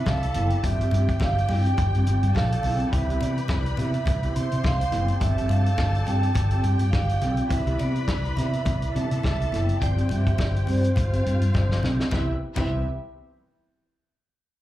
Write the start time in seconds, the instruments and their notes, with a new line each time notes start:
Already playing: grand piano E3 G3 B3 C4 G4, tonewheel organ E3 D5 B5
0.06 fretless electric bass C2, string section A4 A5, vibraphone F5, kick, snare, high conga
0.23 muted clean electric guitar stroke, closed hi-hat
0.34 fretless electric bass F#1, clean electric guitar B3 E4 A4, closed hi-hat, high conga
0.46 vibraphone G5
0.50 muted clean electric guitar stroke, closed hi-hat
0.61 fretless electric bass G1, grand piano F3 G3 C4 D4 G4, tonewheel organ F4 G5, string section G4 G5, vibraphone E5, kick, closed hi-hat
0.66 muted clean electric guitar stroke
0.79 fretless electric bass G1, clean electric guitar C4 F4 G4, closed hi-hat
0.91 fretless electric bass G2, clean electric guitar C4 F4 G4, closed hi-hat, muted conga
1.09 kick, closed hi-hat
1.20 fretless electric bass G1, vibraphone F5, muted clean electric guitar stroke, kick, snare, high conga
1.37 muted clean electric guitar stroke, closed hi-hat
1.49 fretless electric bass G2, clean electric guitar C4 F4 G4, vibraphone G5, open hi-hat, muted conga, low conga
1.66 muted clean electric guitar stroke, closed hi-hat
1.78 fretless electric bass G1, kick, closed hi-hat, low conga
1.94 fretless electric bass G2, clean electric guitar C4 F4 G4, closed hi-hat
2.07 fretless electric bass G1, clean electric guitar C4 F4 G4, closed hi-hat, muted conga
2.23 fretless electric bass G2, muted clean electric guitar stroke, closed hi-hat
2.34 fretless electric bass A#1, string section A4 A5, vibraphone F5, kick, snare, high conga
2.52 muted clean electric guitar stroke, closed hi-hat
2.63 fretless electric bass B1, clean electric guitar C4 F4 A4, open hi-hat, high conga
2.74 vibraphone G5
2.80 muted clean electric guitar stroke, closed hi-hat
2.90 fretless electric bass C2, grand piano E3 G3 C4 G4, string section B4 B5, vibraphone E5, kick, closed hi-hat
3.09 fretless electric bass C2, clean electric guitar B3 E4 G4, closed hi-hat
3.20 fretless electric bass C3, clean electric guitar B3 E4 G4, vibraphone D5, closed hi-hat, muted conga
3.38 closed hi-hat
3.48 fretless electric bass C2, kick, snare, high conga
3.66 muted clean electric guitar stroke, closed hi-hat
3.77 fretless electric bass C3, clean electric guitar B3 E4 G4, vibraphone E5, closed hi-hat, muted conga, low conga
3.94 muted clean electric guitar stroke, closed hi-hat
4.06 fretless electric bass C2, muted clean electric guitar stroke, kick, closed hi-hat, low conga
4.22 clean electric guitar B3 E4 G4, closed hi-hat
4.35 fretless electric bass C3, clean electric guitar B3 E4 G4, string section C5 C6, closed hi-hat, muted conga
4.51 fretless electric bass C3, muted clean electric guitar stroke, closed hi-hat
4.64 fretless electric bass C2, vibraphone F5, kick, snare, high conga
4.79 muted clean electric guitar stroke, closed hi-hat
4.91 fretless electric bass F#1, grand piano E3 G3 B3 C4 G4, clean electric guitar B3 E4 A4, snare, closed hi-hat, high conga
5.02 vibraphone G5
5.08 muted clean electric guitar stroke, closed hi-hat
5.19 fretless electric bass G1, grand piano F3 G3 C4 D4 G4, tonewheel organ F4 G5, string section A4 A5, vibraphone E5, kick, closed hi-hat
5.37 fretless electric bass G1, clean electric guitar C4 F4 G4, closed hi-hat
5.48 fretless electric bass G2, clean electric guitar C4 F4 G4, vibraphone F5, closed hi-hat, muted conga
5.66 muted clean electric guitar stroke, closed hi-hat
5.78 fretless electric bass G1, muted clean electric guitar stroke, kick, snare, high conga
5.95 muted clean electric guitar stroke, closed hi-hat
6.06 fretless electric bass G2, clean electric guitar C4 F4 G4, vibraphone G5, closed hi-hat, muted conga, low conga
6.23 muted clean electric guitar stroke, closed hi-hat
6.35 fretless electric bass G1, kick, closed hi-hat, low conga
6.51 clean electric guitar C4 F4 G4, closed hi-hat
6.63 fretless electric bass G2, clean electric guitar C4 F4 G4, string section G4 G5, closed hi-hat
6.79 fretless electric bass G2, muted clean electric guitar stroke, closed hi-hat
6.90 fretless electric bass G1, vibraphone F5, kick, snare, high conga
7.09 muted clean electric guitar stroke, closed hi-hat
7.21 fretless electric bass B1, clean electric guitar C4 F4 A4, snare, closed hi-hat, high conga
7.30 vibraphone G5
7.37 muted clean electric guitar stroke, closed hi-hat
7.48 fretless electric bass C2, grand piano E3 G3 B3 C4 F#4, tonewheel organ E4 B5, string section B4 B5, vibraphone E5, kick, closed hi-hat
7.58 grand piano G4
7.67 fretless electric bass C2, clean electric guitar B3 E4 G4, closed hi-hat
7.79 fretless electric bass C3, clean electric guitar B3 E4 G4, vibraphone D5, closed hi-hat, muted conga
7.95 muted clean electric guitar stroke, closed hi-hat
8.08 fretless electric bass C2, kick, snare, high conga
8.25 muted clean electric guitar stroke, closed hi-hat
8.36 fretless electric bass C3, clean electric guitar B3 E4 G4, vibraphone E5, closed hi-hat, muted conga, low conga
8.53 muted clean electric guitar stroke, closed hi-hat
8.65 fretless electric bass C2, muted clean electric guitar stroke, kick, closed hi-hat, low conga
8.82 muted clean electric guitar stroke, closed hi-hat
8.94 fretless electric bass C3, grand piano E3 G3 B3 C4 D4, clean electric guitar B3 E4 G4, string section A4 A5, closed hi-hat
9.11 fretless electric bass C3, muted clean electric guitar stroke, closed hi-hat
9.23 fretless electric bass C2, vibraphone E5, kick, snare, high conga
9.39 muted clean electric guitar stroke, closed hi-hat
9.52 fretless electric bass F#1, clean electric guitar B3 E4 A4, snare, closed hi-hat, high conga
9.62 vibraphone G5
9.68 muted clean electric guitar stroke, closed hi-hat
9.80 fretless electric bass G1, grand piano F3 G3 C4 D4 G4, tonewheel organ F4 C5 G5, string section G4 G5, vibraphone D5, kick, closed hi-hat
9.97 fretless electric bass G1, clean electric guitar C4 F4 G4, closed hi-hat
10.09 fretless electric bass G2, clean electric guitar C4 F4 G4, vibraphone E5, closed hi-hat, muted conga
10.26 muted clean electric guitar stroke, kick, closed hi-hat
10.38 fretless electric bass G1, vibraphone D5, muted clean electric guitar stroke, kick, snare, high conga
10.54 muted clean electric guitar stroke, closed hi-hat
10.66 fretless electric bass G2, clean electric guitar C4 F4 G4, vibraphone C5, open hi-hat, muted conga, low conga
10.84 muted clean electric guitar stroke, closed hi-hat
10.95 fretless electric bass G1, string section F4 F5, kick, closed hi-hat, low conga
11.11 clean electric guitar C4 F4 G4, closed hi-hat
11.24 fretless electric bass G2, clean electric guitar C4 F4 G4, closed hi-hat
11.41 fretless electric bass G2, muted clean electric guitar stroke, closed hi-hat
11.54 fretless electric bass G1, grand piano F3 G3 C4 D4 G4, kick, snare, high conga
11.71 snare
11.83 fretless electric bass B1, clean electric guitar C4 F4 A4, snare, high conga
11.99 muted clean electric guitar stroke, snare
12.11 fretless electric bass C2, grand piano E3 G3 B3 C4 G4, clean electric guitar B3 E4 G4, string section C4 B4 E5, tonewheel organ C4 B4 E5, vibraphone E5, kick, snare, muted conga
12.55 fretless electric bass C2, grand piano E3 G3 B3 C4 G4, clean electric guitar B3 E4 G4, string section C4 B4 E5, vibraphone E5, kick, crash, muted conga